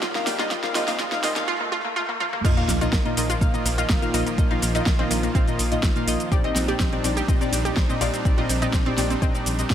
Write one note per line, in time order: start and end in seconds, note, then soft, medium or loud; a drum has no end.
0.00 0.21 A#1 medium
0.00 1.45 C3 medium
0.00 1.44 D#3 medium
0.00 0.12 A#3 medium
0.00 0.49 D4 medium
0.00 0.12 D#4 medium
0.00 0.11 F4 loud
0.00 0.12 F4 medium
0.00 1.45 G4 medium
0.00 0.12 D#5 loud
0.00 kick loud
0.00 snare loud
0.00 closed hi-hat medium
0.00 riser medium
0.15 0.36 A#2 loud
0.15 0.23 A#3 medium
0.15 0.36 A#3 medium
0.15 0.36 D#4 medium
0.15 0.36 F4 medium
0.15 0.36 F5 loud
0.15 snare medium
0.15 closed hi-hat soft
0.27 0.45 A#1 loud
0.27 0.35 A#3 medium
0.27 snare loud
0.27 open hi-hat loud
0.39 0.49 A#2 loud
0.39 0.49 A#3 medium
0.39 0.49 D#4 medium
0.39 0.47 F4 medium
0.39 0.49 F4 medium
0.39 0.49 D#5 loud
0.39 snare medium
0.39 closed hi-hat medium
0.51 0.69 A#1 loud
0.51 0.61 A#2 loud
0.51 0.61 A#3 medium
0.51 1.47 C4 medium
0.51 0.61 D#4 medium
0.51 0.59 F4 loud
0.51 0.61 F4 medium
0.51 0.61 D#5 loud
0.51 kick loud
0.51 snare loud
0.51 closed hi-hat medium
0.64 0.73 A#2 loud
0.64 0.71 A#3 medium
0.64 0.73 A#3 medium
0.64 0.73 D#4 medium
0.64 0.73 F4 medium
0.64 0.73 F5 loud
0.64 snare medium
0.64 closed hi-hat soft
0.75 0.93 A#1 loud
0.75 0.85 A#2 loud
0.75 0.85 A#3 medium
0.75 0.85 D#4 medium
0.75 0.84 F4 loud
0.75 0.85 F4 medium
0.75 0.85 D#5 loud
0.75 snare loud
0.75 open hi-hat loud
0.88 0.98 A#2 medium
0.88 0.96 A#3 medium
0.88 0.98 A#3 medium
0.88 0.98 D#4 medium
0.88 0.98 F4 medium
0.88 0.98 F5 loud
0.88 snare medium
0.88 open hi-hat medium
0.99 1.18 A#1 medium
0.99 1.09 A#2 loud
0.99 1.09 A#3 medium
0.99 1.09 D#4 medium
0.99 1.08 F4 loud
0.99 1.09 F4 medium
0.99 1.09 D#5 loud
0.99 kick loud
0.99 snare loud
0.99 closed hi-hat medium
1.12 1.22 A#2 medium
1.12 1.20 A#3 medium
1.12 1.22 A#3 medium
1.12 1.22 D#4 medium
1.12 1.22 F4 medium
1.12 1.22 F5 loud
1.12 snare medium
1.12 closed hi-hat soft
1.24 1.42 A#1 medium
1.24 1.33 A#2 loud
1.24 1.33 A#3 medium
1.24 1.33 D#4 medium
1.24 1.32 F4 loud
1.24 1.33 F4 medium
1.24 1.33 D#5 loud
1.24 snare loud
1.24 open hi-hat loud
1.36 1.46 A#2 loud
1.36 1.44 A#3 medium
1.36 1.46 A#3 medium
1.36 1.46 D#4 medium
1.36 1.46 F4 medium
1.36 1.46 F5 loud
1.36 snare medium
1.36 closed hi-hat medium
1.48 1.56 F4 loud
1.60 1.68 A#3 medium
1.72 1.80 F4 loud
1.85 1.92 A#3 medium
1.96 2.05 F4 loud
2.09 2.17 A#3 medium
2.20 2.29 F4 loud
2.20 high tom medium
2.33 2.41 A#3 medium
2.33 mid tom medium
2.44 2.63 A#1 loud
2.44 2.54 A#2 loud
2.44 6.28 D#3 medium
2.44 6.28 F3 medium
2.44 6.28 A#3 medium
2.44 2.54 A#3 medium
2.44 2.54 D#4 medium
2.44 6.28 F4 medium
2.44 2.53 F4 loud
2.44 2.54 F4 medium
2.44 2.54 D#5 loud
2.44 kick loud
2.44 closed hi-hat medium
2.44 crash loud
2.44 sub drop medium
2.44 shaker soft
2.57 2.78 A#2 loud
2.57 2.65 A#3 medium
2.57 2.78 A#3 medium
2.57 2.78 D#4 medium
2.57 2.78 F4 medium
2.57 2.78 F5 loud
2.57 closed hi-hat soft
2.69 2.87 A#1 loud
2.69 2.77 A#3 medium
2.69 snare medium
2.69 open hi-hat loud
2.69 shaker medium
2.81 2.94 A#2 loud
2.81 2.94 A#3 medium
2.81 2.94 D#4 medium
2.81 2.89 F4 medium
2.81 2.94 F4 medium
2.81 2.94 D#5 loud
2.81 closed hi-hat medium
2.81 shaker soft
2.93 3.11 A#1 medium
2.93 3.01 A#3 medium
2.93 kick loud
2.93 snare loud
2.93 closed hi-hat medium
2.93 shaker soft
3.06 3.14 A#2 medium
3.06 3.13 A#3 medium
3.06 3.14 A#3 medium
3.06 3.14 D#4 medium
3.06 3.14 F4 medium
3.06 3.14 D#5 medium
3.06 closed hi-hat soft
3.17 3.35 A#1 medium
3.17 3.38 A#2 medium
3.17 3.26 A#3 medium
3.17 3.38 A#3 medium
3.17 3.38 D#4 medium
3.17 3.38 F4 medium
3.17 3.38 D#5 medium
3.17 open hi-hat loud
3.17 shaker medium
3.30 3.38 F4 medium
3.30 closed hi-hat medium
3.30 shaker soft
3.41 3.51 A#1 medium
3.41 3.52 A#2 loud
3.41 3.50 A#3 medium
3.41 3.52 A#3 medium
3.41 3.52 D#4 medium
3.41 3.52 F4 medium
3.41 3.52 F5 loud
3.41 kick loud
3.41 closed hi-hat medium
3.41 shaker soft
3.54 3.67 A#2 medium
3.54 3.62 A#3 medium
3.54 3.67 A#3 medium
3.54 3.67 D#4 medium
3.54 3.67 F4 medium
3.54 3.67 D#5 loud
3.54 closed hi-hat soft
3.54 shaker soft
3.66 3.84 A#1 medium
3.66 3.74 A#3 medium
3.66 open hi-hat loud
3.66 shaker medium
3.78 3.91 A#2 medium
3.78 3.91 A#3 medium
3.78 3.91 D#4 medium
3.78 3.86 F4 loud
3.78 3.91 F4 medium
3.78 3.91 D#5 medium
3.78 closed hi-hat medium
3.78 shaker soft
3.90 3.99 A#1 loud
3.90 3.98 A#3 medium
3.90 kick loud
3.90 snare loud
3.90 closed hi-hat medium
3.90 shaker soft
4.02 4.11 A#2 loud
4.02 4.10 A#3 medium
4.02 4.11 A#3 medium
4.02 4.11 D#4 medium
4.02 4.11 F4 medium
4.02 4.11 F5 loud
4.02 closed hi-hat soft
4.02 shaker soft
4.14 4.23 A#1 medium
4.14 4.35 A#2 loud
4.14 4.35 A#3 medium
4.14 4.22 D#4 loud
4.14 4.35 D#4 medium
4.14 4.35 F4 medium
4.14 4.35 D#5 loud
4.14 open hi-hat loud
4.14 shaker medium
4.26 4.34 A#3 medium
4.26 closed hi-hat medium
4.26 shaker soft
4.38 4.56 A#1 loud
4.38 4.48 A#2 loud
4.38 4.47 A#3 medium
4.38 4.48 A#3 medium
4.38 4.48 D#4 medium
4.38 4.48 F4 medium
4.38 4.48 D#5 loud
4.38 kick loud
4.38 closed hi-hat medium
4.38 shaker soft
4.51 4.72 A#2 loud
4.51 4.72 A#3 medium
4.51 4.72 D#4 medium
4.51 4.59 D#4 medium
4.51 4.72 F4 medium
4.51 4.72 F5 loud
4.51 closed hi-hat soft
4.62 4.80 A#1 loud
4.62 4.71 A#3 medium
4.62 open hi-hat loud
4.62 shaker medium
4.75 4.88 A#2 medium
4.75 4.88 A#3 medium
4.75 4.88 D#4 medium
4.75 4.83 D#4 medium
4.75 4.88 F4 medium
4.75 4.88 D#5 loud
4.75 closed hi-hat medium
4.75 shaker soft
4.86 5.05 A#1 medium
4.86 4.95 A#3 medium
4.86 kick loud
4.86 snare loud
4.86 closed hi-hat medium
4.86 shaker soft
4.99 5.08 A#2 medium
4.99 5.08 A#3 medium
4.99 5.07 C4 loud
4.99 5.08 D#4 medium
4.99 5.08 F4 medium
4.99 5.08 D#5 medium
4.99 closed hi-hat soft
5.11 5.29 A#1 medium
5.11 5.31 A#2 medium
5.11 5.31 A#3 medium
5.11 5.19 A#3 medium
5.11 5.31 D#4 medium
5.11 5.31 F4 medium
5.11 5.31 D#5 medium
5.11 open hi-hat loud
5.11 shaker medium
5.23 5.31 A#3 medium
5.23 closed hi-hat medium
5.23 shaker soft
5.35 5.44 A#1 medium
5.35 5.46 A#2 loud
5.35 5.46 A#3 medium
5.35 6.22 C4 loud
5.35 5.46 D#4 medium
5.35 5.46 F4 medium
5.35 5.46 F5 loud
5.35 kick loud
5.35 closed hi-hat medium
5.35 shaker soft
5.47 5.60 A#2 medium
5.47 5.60 A#3 medium
5.47 5.60 D#4 medium
5.47 5.60 F4 medium
5.47 5.60 D#5 loud
5.47 closed hi-hat soft
5.47 shaker soft
5.59 5.77 A#1 medium
5.59 open hi-hat loud
5.59 shaker medium
5.72 5.85 A#2 medium
5.72 5.85 A#3 medium
5.72 5.85 D#4 medium
5.72 5.85 F4 medium
5.72 5.85 D#5 medium
5.72 closed hi-hat medium
5.72 shaker soft
5.83 5.93 A#1 loud
5.83 kick loud
5.83 snare loud
5.83 closed hi-hat medium
5.83 shaker soft
5.96 6.05 A#2 loud
5.96 6.05 A#3 medium
5.96 6.05 D#4 medium
5.96 6.05 F4 medium
5.96 6.05 F5 loud
5.96 closed hi-hat soft
5.96 shaker soft
6.07 6.17 A#1 medium
6.07 6.29 A#3 loud
6.07 6.29 D#4 medium
6.07 6.29 F4 medium
6.07 6.29 D#5 loud
6.07 open hi-hat loud
6.07 shaker medium
6.20 closed hi-hat medium
6.20 shaker soft
6.32 6.50 A#1 loud
6.32 6.41 A#2 loud
6.32 9.74 G3 medium
6.32 6.41 C4 medium
6.32 9.74 C4 medium
6.32 9.74 D4 medium
6.32 6.41 D#4 medium
6.32 9.74 D#4 medium
6.32 6.41 G4 medium
6.32 6.40 G4 medium
6.32 6.41 D5 loud
6.32 kick loud
6.32 closed hi-hat soft
6.32 shaker soft
6.44 6.65 A#2 loud
6.44 6.52 C4 medium
6.44 6.65 C4 medium
6.44 6.65 D#4 medium
6.44 6.65 G4 medium
6.44 6.65 D#5 loud
6.44 closed hi-hat soft
6.56 6.74 A#1 loud
6.56 6.64 C4 medium
6.56 snare medium
6.56 open hi-hat loud
6.56 shaker medium
6.68 6.81 A#2 loud
6.68 6.81 C4 medium
6.68 6.81 D#4 medium
6.68 6.76 G4 loud
6.68 6.81 G4 medium
6.68 6.81 D5 loud
6.68 closed hi-hat medium
6.68 shaker soft
6.80 6.98 A#1 medium
6.80 6.88 C4 medium
6.80 kick loud
6.80 snare loud
6.80 closed hi-hat soft
6.80 shaker soft
6.93 7.01 A#2 medium
6.93 7.00 C4 medium
6.93 7.01 C4 medium
6.93 7.01 D#4 medium
6.93 7.01 G4 medium
6.93 7.01 D5 loud
6.93 closed hi-hat soft
7.04 7.22 A#1 medium
7.04 7.25 A#2 medium
7.04 7.13 C4 medium
7.04 7.25 C4 medium
7.04 7.25 D#4 medium
7.04 7.25 G4 medium
7.04 7.25 D5 medium
7.04 open hi-hat loud
7.04 shaker medium
7.17 7.25 G4 medium
7.17 closed hi-hat medium
7.17 shaker soft
7.28 7.38 A#1 medium
7.28 7.39 A#2 loud
7.28 7.39 C4 medium
7.28 7.37 C4 medium
7.28 7.39 D#4 medium
7.28 7.39 G4 medium
7.28 7.39 D#5 loud
7.28 kick loud
7.28 closed hi-hat medium
7.28 shaker soft
7.41 7.54 A#2 medium
7.41 7.49 C4 medium
7.41 7.54 C4 medium
7.41 7.54 D#4 medium
7.41 7.54 G4 medium
7.41 7.54 D5 loud
7.41 closed hi-hat soft
7.41 shaker soft
7.53 7.71 A#1 medium
7.53 7.61 C4 medium
7.53 open hi-hat loud
7.53 shaker medium
7.65 7.78 A#2 medium
7.65 7.78 C4 medium
7.65 7.78 D#4 medium
7.65 7.73 G4 loud
7.65 7.78 G4 medium
7.65 7.78 D5 medium
7.65 closed hi-hat medium
7.65 shaker soft
7.77 7.86 A#1 loud
7.77 7.85 C4 medium
7.77 kick loud
7.77 snare loud
7.77 closed hi-hat medium
7.77 shaker soft
7.89 7.98 A#2 loud
7.89 7.97 C4 medium
7.89 7.98 C4 medium
7.89 7.98 D#4 medium
7.89 7.98 G4 loud
7.89 7.98 D#5 loud
7.89 closed hi-hat soft
7.89 shaker soft
8.01 8.10 A#1 medium
8.01 8.22 A#2 loud
8.01 8.22 C4 medium
8.01 8.22 D#4 medium
8.01 8.09 F4 loud
8.01 8.22 G4 medium
8.01 8.22 D5 loud
8.01 open hi-hat loud
8.01 shaker medium
8.14 8.21 C4 medium
8.14 closed hi-hat medium
8.14 shaker soft
8.25 8.43 A#1 loud
8.25 8.35 A#2 loud
8.25 8.34 C4 medium
8.25 8.35 C4 medium
8.25 8.35 D#4 medium
8.25 8.35 G4 medium
8.25 8.35 D5 loud
8.25 kick loud
8.25 closed hi-hat soft
8.25 shaker soft
8.38 8.59 A#2 loud
8.38 8.59 C4 medium
8.38 8.59 D#4 medium
8.38 8.46 F4 medium
8.38 8.59 G4 medium
8.38 8.59 D#5 loud
8.38 closed hi-hat soft
8.49 8.68 A#1 loud
8.49 8.58 C4 medium
8.49 open hi-hat loud
8.49 shaker medium
8.62 8.75 A#2 loud
8.62 8.75 C4 medium
8.62 8.70 D#4 medium
8.62 8.75 D#4 medium
8.62 8.75 G4 medium
8.62 8.75 D5 loud
8.62 closed hi-hat medium
8.62 shaker soft
8.73 8.92 A#1 medium
8.73 8.82 C4 medium
8.73 kick loud
8.73 snare loud
8.73 closed hi-hat soft
8.73 shaker soft
8.86 8.95 A#2 medium
8.86 8.95 C4 medium
8.86 8.94 C4 loud
8.86 8.95 D#4 medium
8.86 8.95 G4 medium
8.86 8.95 D5 medium
8.86 closed hi-hat soft
8.98 9.16 A#1 medium
8.98 9.19 A#2 medium
8.98 9.06 C4 medium
8.98 9.19 C4 medium
8.98 9.19 D#4 medium
8.98 9.19 G4 medium
8.98 9.19 D5 medium
8.98 snare medium
8.98 open hi-hat loud
8.98 shaker medium
9.10 9.18 C4 medium
9.10 closed hi-hat medium
9.10 shaker soft
9.22 9.31 A#1 medium
9.22 9.33 A#2 medium
9.22 9.33 C4 medium
9.22 9.74 C4 loud
9.22 9.33 D#4 medium
9.22 9.33 G4 medium
9.22 9.33 D#5 loud
9.22 kick loud
9.22 closed hi-hat medium
9.22 shaker soft
9.35 9.48 A#2 medium
9.35 9.48 C4 medium
9.35 9.48 D#4 medium
9.35 9.48 G4 medium
9.35 9.48 D5 loud
9.35 closed hi-hat soft
9.35 shaker soft
9.46 9.64 A#1 medium
9.46 open hi-hat loud
9.46 shaker medium
9.59 9.69 A#2 medium
9.59 9.69 C4 medium
9.59 9.69 D#4 medium
9.59 9.69 G4 medium
9.59 9.69 D#5 medium
9.59 closed hi-hat medium
9.59 shaker soft
9.70 9.74 A#2 medium
9.70 9.74 A#2 loud
9.70 9.74 C4 medium
9.70 9.74 D#4 medium
9.70 9.74 G4 medium
9.70 9.74 D5 loud
9.70 kick loud
9.70 snare loud
9.70 closed hi-hat soft
9.70 shaker soft